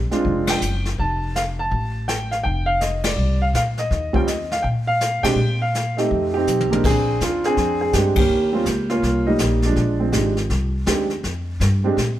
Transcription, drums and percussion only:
0.12 snare
0.25 brush sweep, kick
0.47 snare, ride
0.62 hi-hat pedal
0.85 snare
0.98 brush sweep, kick
1.36 snare, hi-hat pedal
1.72 brush sweep, kick
2.08 snare, hi-hat pedal
2.32 snare
2.45 brush sweep, kick
2.81 snare, hi-hat pedal
3.04 snare, ride
3.18 brush sweep
3.54 snare, hi-hat pedal
3.78 snare
3.91 brush sweep, kick, snare
4.14 kick
4.28 snare, hi-hat pedal
4.51 snare
4.64 brush sweep, kick
5.01 snare, hi-hat pedal
5.24 snare, ride
5.38 brush sweep
5.75 snare, hi-hat pedal
5.98 snare
6.11 brush sweep, kick
6.47 hi-hat pedal, high tom
6.61 high tom
6.73 high tom
6.84 brush sweep, kick, snare, crash
7.21 kick, snare, hi-hat pedal
7.44 snare
7.57 brush sweep, kick, snare
7.93 kick, snare, hi-hat pedal
8.16 kick, ride
8.30 brush sweep
8.66 kick, snare, hi-hat pedal
8.90 snare
9.03 brush sweep, kick, snare
9.39 kick, snare, hi-hat pedal
9.62 snare
9.76 brush sweep, kick, snare
10.13 kick, snare, hi-hat pedal
10.37 snare
10.50 brush sweep, kick, snare
10.87 kick, snare, hi-hat pedal
11.10 snare
11.24 brush sweep, kick, snare
11.60 kick, snare, hi-hat pedal
11.97 brush sweep, kick, snare

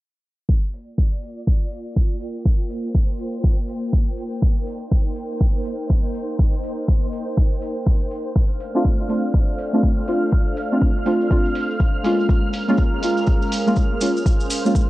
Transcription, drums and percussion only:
0.49 kick
0.73 open hi-hat
0.98 kick
1.23 open hi-hat
1.47 kick
1.72 open hi-hat
1.96 kick
2.21 open hi-hat
2.46 kick
2.70 open hi-hat
2.95 kick
3.19 open hi-hat
3.44 kick
3.69 open hi-hat
3.93 kick
4.18 open hi-hat
4.42 kick
4.67 open hi-hat
4.91 kick
5.16 open hi-hat
5.41 kick
5.65 open hi-hat
5.90 kick
6.15 open hi-hat
6.39 kick
6.64 open hi-hat
6.88 kick
7.13 open hi-hat
7.37 kick
7.62 open hi-hat
7.87 kick
8.11 open hi-hat
8.35 kick, cabasa
8.60 open hi-hat, cabasa
8.75 cabasa
8.84 kick, cabasa
9.09 open hi-hat, cabasa
9.24 cabasa
9.34 kick, cabasa
9.49 cabasa
9.58 open hi-hat, cabasa
9.73 cabasa
9.83 kick, cabasa
10.08 open hi-hat, cabasa
10.23 cabasa
10.32 kick, cabasa
10.56 open hi-hat, cabasa
10.72 cabasa
10.81 kick, cabasa
11.06 open hi-hat, cabasa
11.21 cabasa
11.31 kick, cabasa
11.45 cabasa
11.55 open hi-hat, cabasa
11.70 cabasa
11.80 kick, cabasa
12.04 open hi-hat, cabasa
12.20 cabasa
12.29 kick, cabasa
12.53 open hi-hat, cabasa
12.69 cabasa
12.78 kick, cabasa
13.03 open hi-hat, cabasa
13.17 cabasa
13.27 kick, cabasa
13.42 cabasa
13.52 open hi-hat, cabasa
13.67 cabasa
13.76 kick, cabasa
14.01 open hi-hat, cabasa
14.17 cabasa
14.26 kick, cabasa
14.40 cabasa
14.50 open hi-hat, cabasa
14.66 cabasa
14.75 kick, cabasa

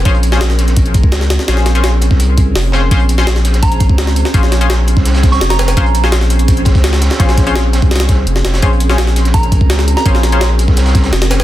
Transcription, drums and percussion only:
0.05 kick, closed hi-hat
0.15 closed hi-hat
0.23 closed hi-hat
0.32 snare
0.41 snare, closed hi-hat
0.50 snare, closed hi-hat
0.58 snare, closed hi-hat
0.68 snare, closed hi-hat
0.76 kick, closed hi-hat
0.86 closed hi-hat
0.94 kick, closed hi-hat
1.03 kick
1.12 snare, closed hi-hat
1.21 snare, closed hi-hat
1.30 snare, closed hi-hat
1.39 snare
1.48 snare, closed hi-hat
1.57 snare
1.66 snare, closed hi-hat
1.75 closed hi-hat
1.84 snare, closed hi-hat
2.01 closed hi-hat
2.11 kick, snare
2.20 closed hi-hat
2.37 kick, closed hi-hat
2.56 snare, closed hi-hat, open hi-hat
2.72 snare, closed hi-hat
2.91 kick, closed hi-hat
2.99 closed hi-hat
3.09 closed hi-hat
3.18 snare
3.27 snare, closed hi-hat
3.36 snare, closed hi-hat
3.45 snare, closed hi-hat
3.54 snare, closed hi-hat
3.63 kick, closed hi-hat
3.72 closed hi-hat
3.80 kick, closed hi-hat
3.89 kick
3.98 snare, closed hi-hat
4.07 snare, closed hi-hat
4.16 closed hi-hat
4.25 snare
4.34 kick, closed hi-hat
4.43 snare
4.52 snare, closed hi-hat
4.61 closed hi-hat
4.70 snare, closed hi-hat
4.87 closed hi-hat
4.97 kick, snare
5.05 snare, closed hi-hat
5.14 snare, closed hi-hat
5.23 kick, snare, closed hi-hat
5.33 snare, closed hi-hat
5.41 snare, closed hi-hat
5.50 snare, closed hi-hat
5.59 snare, closed hi-hat
5.68 snare, closed hi-hat
5.77 kick, closed hi-hat
5.86 closed hi-hat
5.95 closed hi-hat
6.04 snare
6.12 snare, closed hi-hat
6.21 snare, closed hi-hat
6.30 closed hi-hat
6.39 closed hi-hat
6.48 kick, closed hi-hat
6.57 closed hi-hat
6.65 kick, snare, closed hi-hat
6.75 kick, snare, closed hi-hat
6.84 snare, closed hi-hat
6.93 snare, closed hi-hat
7.01 snare, closed hi-hat
7.10 snare, closed hi-hat
7.19 kick, snare, closed hi-hat
7.29 snare, closed hi-hat
7.37 kick, snare, closed hi-hat
7.47 closed hi-hat
7.55 snare, closed hi-hat
7.73 snare, closed hi-hat
7.82 kick, closed hi-hat
7.91 snare, closed hi-hat
7.96 snare, closed hi-hat
8.00 snare, closed hi-hat
8.09 kick, snare, closed hi-hat
8.27 closed hi-hat
8.36 snare
8.44 snare, closed hi-hat
8.53 snare, closed hi-hat
8.62 kick, closed hi-hat
8.73 closed hi-hat
8.80 closed hi-hat
8.90 snare
8.98 snare, closed hi-hat
9.07 snare, closed hi-hat
9.16 snare, closed hi-hat
9.25 snare, closed hi-hat
9.34 kick, closed hi-hat
9.43 closed hi-hat
9.52 kick, closed hi-hat
9.61 kick
9.70 snare, closed hi-hat
9.79 snare, closed hi-hat
9.88 closed hi-hat
9.97 snare
10.06 kick, closed hi-hat
10.15 snare
10.23 snare, closed hi-hat
10.32 closed hi-hat
10.41 snare, closed hi-hat
10.59 closed hi-hat
10.68 kick, snare
10.77 snare, closed hi-hat
10.86 snare, closed hi-hat
10.94 kick, snare, closed hi-hat
11.03 snare, closed hi-hat
11.13 snare, closed hi-hat
11.22 snare, closed hi-hat
11.30 snare, closed hi-hat
11.40 snare, closed hi-hat

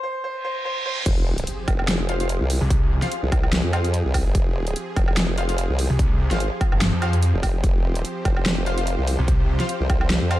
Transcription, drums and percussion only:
1.06 kick, closed hi-hat, crash
1.38 closed hi-hat
1.47 closed hi-hat
1.68 kick, closed hi-hat, low woodblock
1.79 low woodblock
1.88 snare, closed hi-hat
2.09 closed hi-hat
2.20 closed hi-hat
2.29 closed hi-hat
2.50 open hi-hat
2.70 kick, closed hi-hat
3.02 snare, closed hi-hat
3.12 closed hi-hat
3.32 kick, closed hi-hat, low woodblock
3.43 low woodblock
3.53 snare, closed hi-hat
3.73 closed hi-hat, low woodblock
3.84 closed hi-hat
3.94 closed hi-hat
4.14 kick, open hi-hat, low woodblock
4.35 kick, closed hi-hat
4.67 closed hi-hat
4.76 closed hi-hat
4.96 kick, closed hi-hat, low woodblock
5.08 low woodblock
5.17 snare, closed hi-hat
5.38 closed hi-hat
5.49 closed hi-hat
5.58 closed hi-hat
5.79 open hi-hat
5.99 kick, closed hi-hat
6.31 snare, closed hi-hat
6.40 closed hi-hat
6.61 kick, closed hi-hat, low woodblock
6.72 low woodblock
6.81 snare, closed hi-hat
7.02 closed hi-hat, low woodblock
7.13 closed hi-hat
7.22 closed hi-hat
7.43 kick, open hi-hat, low woodblock
7.64 kick, closed hi-hat
7.95 closed hi-hat
8.05 closed hi-hat
8.25 kick, closed hi-hat, low woodblock
8.37 low woodblock
8.46 snare, closed hi-hat
8.66 closed hi-hat
8.78 closed hi-hat
8.87 closed hi-hat
9.07 open hi-hat
9.28 kick, closed hi-hat
9.60 snare, closed hi-hat
9.69 closed hi-hat
9.90 kick, closed hi-hat, low woodblock
10.01 low woodblock
10.10 snare, closed hi-hat
10.31 closed hi-hat, low woodblock

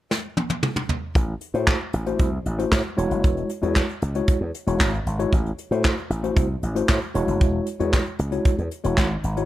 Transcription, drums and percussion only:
0.11 snare
0.37 high tom
0.50 high tom
0.63 mid tom
0.76 mid tom
0.89 floor tom
1.15 kick, closed hi-hat
1.41 closed hi-hat
1.54 closed hi-hat
1.67 kick, snare, clap
1.93 closed hi-hat
2.06 closed hi-hat
2.19 kick, closed hi-hat
2.46 closed hi-hat
2.59 closed hi-hat
2.72 kick, snare, clap
2.98 closed hi-hat
3.11 closed hi-hat
3.24 kick, closed hi-hat
3.37 closed hi-hat
3.49 closed hi-hat
3.63 closed hi-hat
3.76 kick, snare, clap
3.89 closed hi-hat
4.02 closed hi-hat
4.15 closed hi-hat
4.28 kick, closed hi-hat
4.54 closed hi-hat
4.67 closed hi-hat
4.80 kick, snare, clap
4.94 closed hi-hat
5.07 closed hi-hat
5.19 closed hi-hat
5.33 kick, closed hi-hat
5.46 closed hi-hat
5.58 closed hi-hat
5.72 closed hi-hat
5.85 kick, snare, clap
5.98 closed hi-hat
6.11 closed hi-hat
6.24 closed hi-hat
6.36 kick, closed hi-hat
6.63 closed hi-hat
6.76 closed hi-hat
6.89 kick, snare, clap
7.02 closed hi-hat
7.15 closed hi-hat
7.28 closed hi-hat
7.41 kick, closed hi-hat
7.66 closed hi-hat
7.80 closed hi-hat
7.93 kick, snare, clap
8.06 closed hi-hat
8.19 closed hi-hat
8.32 closed hi-hat
8.45 kick, closed hi-hat
8.58 closed hi-hat
8.71 closed hi-hat
8.84 closed hi-hat
8.98 kick, snare, clap
9.24 closed hi-hat
9.37 closed hi-hat

